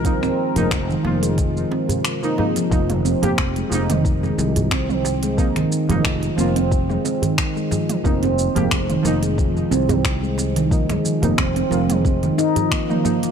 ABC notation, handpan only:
X:1
M:4/4
L:1/16
Q:"Swing 16ths" 1/4=90
K:Fm
V:1 name="Handpan" clef=bass
C C z A, z E,2 A, F, z C C, z F, A, F, | F,2 C C z A, C E,2 A, F,2 C C z A, | C E,2 A, z2 C C z A, C E,2 A, F,2 | C C z A, z E,2 A, F,2 C C z A, C E,- |
E, A, F,2 C C z A, C E, E F, B, z B, F, |]